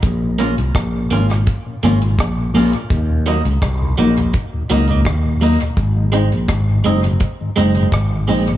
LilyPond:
<<
  \new Staff \with { instrumentName = "Clean electric guitar" } { \time 4/4 \key ees \dorian \tempo 4 = 84 r8 <bes des' f'>16 r8. <bes des' f'>16 r8. <bes des' f'>16 r8. <bes des' f'>16 r16 | r8 <ges bes ees'>16 r8. <ges bes ees'>16 r8. <ges bes ees'>16 <ges bes ees'>16 r8 <ges bes ees'>16 r16 | r8 <aes c' ees'>16 r8. <aes c' ees'>16 r8. <aes c' ees'>16 <aes c' ees'>16 r8 <aes c' ees'>16 r16 | }
  \new Staff \with { instrumentName = "Tonewheel organ" } { \clef bass \time 4/4 \key ees \dorian << { r8 <f bes des'>8 r8 <f bes des'>8 r8 <f bes des'>8 r8 <f bes des'>8 | r8 <ges bes ees'>8 r8 <ges bes ees'>8 r8 <ges bes ees'>8 r8 <ges bes ees'>8 | r8 <aes c' ees'>8 r8 <aes c' ees'>8 r8 <aes c' ees'>8 r8 <aes c' ees'>8 | } \\ { r16 bes,16 r8. bes,16 r16 bes,16 r16 bes,16 r16 bes,16 r16 bes,16 r16 bes,16 | r16 <ees, bes,>16 r8. <ees, bes,>16 r16 <ees, bes,>16 r16 <ees, bes,>16 r16 <ees, bes,>16 r16 <ees, bes,>16 r16 <ees, bes,>16 | r16 <aes, ees>16 r8. <aes, ees>16 r16 <aes, ees>16 r16 <aes, ees>16 r16 <aes, ees>16 r16 <aes, ees>16 r16 <aes, ees>16 | } >> }
  \new Staff \with { instrumentName = "Fretless electric bass" } { \clef bass \time 4/4 \key ees \dorian bes,,8. c,16 bes,,8 aes,,8 r8 aes,,8 bes,,8 bes,,16 r16 | ees,8. des,16 c,8 bes,,8 r8 des,8 ees,8. r16 | aes,,8. bes,,16 aes,,8 ges,,8 r8 ges,,8 aes,,8 bes,,8 | }
  \new DrumStaff \with { instrumentName = "Drums" } \drummode { \time 4/4 <hh bd>8 hh16 hh16 <hh bd ss>8 hh16 <hh ss>16 <hh bd>8 hh16 hh16 <hh bd ss>8 hho16 hh16 | <hh bd>8 hh16 hh16 <hh bd ss>8 hh16 hh16 <hh bd>8 hh16 hh16 <hh bd ss>8 hho16 hh16 | <hh bd>8 hh16 hh16 <hh bd ss>8 hh16 hh16 <hh bd>8 hh16 hh16 <hh bd ss>8 hho16 hh16 | }
>>